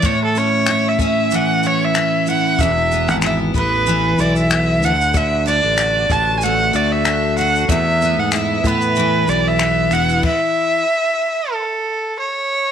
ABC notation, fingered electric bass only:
X:1
M:4/4
L:1/16
Q:"Swing 16ths" 1/4=94
K:Emix
V:1 name="Fingered electric bass" clef=bass
z16 | E,,,3 G,,,3 A,,,4 B,,,4 D,,2 | D,,3 A,,,3 A,,,4 D,,6 | E,,3 G,,3 A,,4 B,,,4 E,,,2 |
z16 |]